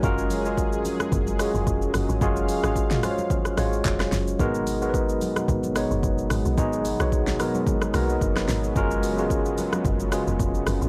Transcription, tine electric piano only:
X:1
M:4/4
L:1/16
Q:"Swing 16ths" 1/4=110
K:F#
V:1 name="Tine electric piano"
[G,CEFA]2 z [G,CEFG]6 z [G,CEFG]4- [G,CEFG] z | [G,CEFG]2 z [G,CEFG]2 z [G,CEF^Bc]3 z [G,CEFc]4- [G,CEFc] z | [G,B,DFA]2 z [G,B,DFAB]6 z [G,B,DFc]4- [G,B,DFc] z | [G,B,DFG]2 z [G,B,DFc]2 z [G,B,DFA]3 z [G,A,B,DFA]4- [G,A,B,DFA] z |
[G,CEFA]2 z [G,CEFG]6 z [G,CEFG]4- [G,CEFG] z |]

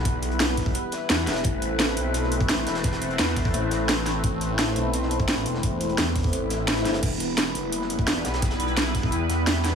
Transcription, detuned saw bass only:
X:1
M:4/4
L:1/8
Q:1/4=172
K:Ador
V:1 name="Detuned saw bass" clef=bass
B,,,2 B,,,2 z2 E,, E,,, | A,,,3 B,,,3 A,,, E,,,- | E,,,2 E,,2 A,,, A,,,3 | A,,,3 B,,,3 A,,, E,,,- |
E,,,2 E,,2 A,,,3 G,,, | E,,,3 F,,,3 E,,, B,,,- | B,,,2 B,,,2 E,, E,,3 |]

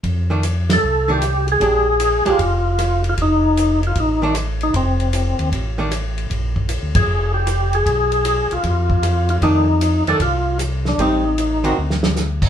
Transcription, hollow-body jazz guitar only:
X:1
M:4/4
L:1/8
Q:"Swing" 1/4=153
K:Fmix
V:1 name="Hollow-body jazz guitar"
z [E,A,D] z3 [E,A,D] z2 | [_A,DG] z2 [A,DG] z4 | z4 z [E,A,D] z2 | z4 z [E,A,D] z2 |
z8 | z8 | [E,A,D] z2 [E,A,D] z4 | [G,CE] z2 [D,C_GB] z4 |]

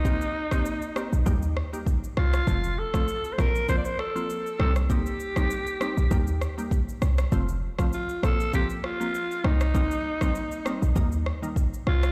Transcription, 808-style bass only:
X:1
M:4/4
L:1/16
Q:"Swing 16ths" 1/4=99
K:Cdor
V:1 name="808-style bass" clef=bass
C,,2 z4 z B,,, E,,3 z3 C,,2 | F,,,3 z3 B,,,4 z4 C,,2- | C,,2 z4 z B,,, E,,3 z3 C,,2 | F,,,3 z3 B,,,4 z4 C,,2- |
C,,2 z4 z B,,, E,,3 z3 C,,2 |]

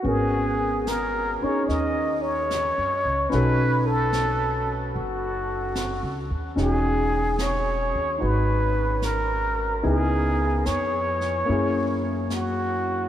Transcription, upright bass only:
X:1
M:4/4
L:1/8
Q:"Swing" 1/4=74
K:G#m
V:1 name="Upright bass" clef=bass
G,,,3 z D,,2- (3D,, F,, C,, | B,,,4 F,,,2- (3F,,, C,, D,, | E,,,3 D,, G,,,4 | C,,2 ^E,,2 F,,4 |]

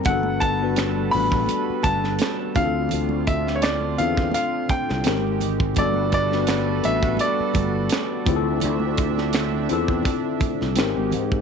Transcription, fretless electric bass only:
X:1
M:4/4
L:1/16
Q:"Swing 16ths" 1/4=84
K:G
V:1 name="Fretless electric bass" clef=bass
G,,,6 A,,,2 z2 G,,,2 z2 D,,2 | D,,6 E,,2 z3 C,, _A,,,4 | G,,,6 A,,,2 z2 G,,,2 z2 D,,2 | D,,6 E,,2 z3 C,, _A,,, A,,, _A,,2 |]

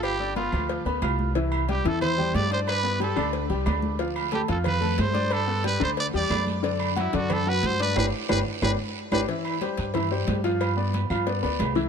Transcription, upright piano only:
X:1
M:4/4
L:1/8
Q:1/4=182
K:C
V:1 name="Upright piano"
[Fff'] [Ddd'] [B,Bb] [F,Ff]2 [B,Bb] [Fff']2 | [E,Ee]2 [G,Gg] [E,Ee]2 [G,Gg]2 [Ddd']- | [Ddd'] [B,Bb] [G,Gg] [D,Dd]2 [G,Gg] [Ddd']2 | [F,Ff]2 [A,Aa] [F,Ff]2 [A,Aa]2 [Ddd']- |
[Ddd'] [B,Bb] [G,Gg] [D,Dd]2 [G,Gg] [Ddd']2 | [D,Dd]2 [^F,^F^f] [D,Dd]2 [F,Ff]2 [Ddd'] | [DGB] z [DGB] z [DGB] z2 [DGB] | [E,Ee]2 [G,Gc]2 [E,Ee] [G,Gc]2 [F,Ff]- |
[F,Ff] [B,Bd]2 [F,Ff] [B,Bd] [B,Bd]2 [E,Ee] |]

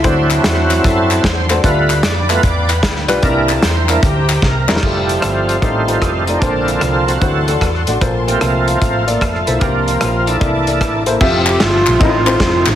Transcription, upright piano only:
X:1
M:4/4
L:1/8
Q:"Swing" 1/4=150
K:F
V:1 name="Upright piano"
[A,D^Fc]2 z4 z [A,DFc] | [G,DF=B]2 z4 z [G,DFB] | [G,C_E=EB]2 z4 z [G,CEB] | [G,EFA]2 z2 [A,_EFc] [A,EFc] z [A,EFd] |
[B,DAc]2 z2 [A,D^Fc] [A,DFA] z [A,DFd] | [B,FAc]2 z3 [B,FAd] z [B,FAc] | [B,FGc]2 z2 [B,EAd] [B,EAd] z [B,EAc] | [CFGAe]2 z2 [C_EFA_e] [CEFAc]2 z |]
V:2 name="Upright piano" clef=bass
D,3 z4 z | D,3 z4 z | C,3 z4 z | z4 A,,3 z |
B,,3 z D,3 z | B,,3 z4 z | C,3 z C,3 z | z4 A,,3 z |]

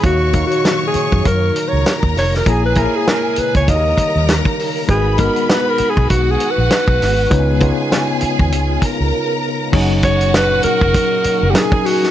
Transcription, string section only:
X:1
M:4/4
L:1/8
Q:"Swing 16ths" 1/4=99
K:F#
V:1 name="String section"
[cc']4- [cc'] [Aa]3 | [Gg]4 [Aa]4 | [B,b]4 [Ff]4 | [Gg]4- [Gg] [Aa]3 |
[Ff]6 [Gg]2 |]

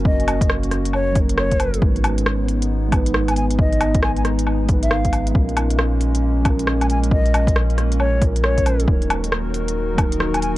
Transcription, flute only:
X:1
M:4/4
L:1/16
Q:"Swing 16ths" 1/4=136
K:Bbphr
V:1 name="Flute"
e4 z4 d2 z2 d4 | z12 z a a z | e4 a a z4 z f4 z | z12 z a a z |
e4 z4 d2 z2 d4 | z12 z a a z |]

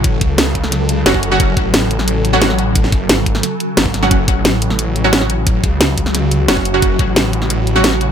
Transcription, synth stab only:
X:1
M:4/4
L:1/16
Q:1/4=177
K:F#m
V:1 name="Synth stab"
[F,CF]12 [F,CF] z2 [F,CF] | z8 z3 [F,CF]4- [F,CF]- | [F,CF]12 z3 [F,CF] | z8 z3 [F,CF]4- [F,CF]- |
[F,CF]12 [F,CF] z2 [F,CF] | z8 z3 [F,CF]4- [F,CF] |]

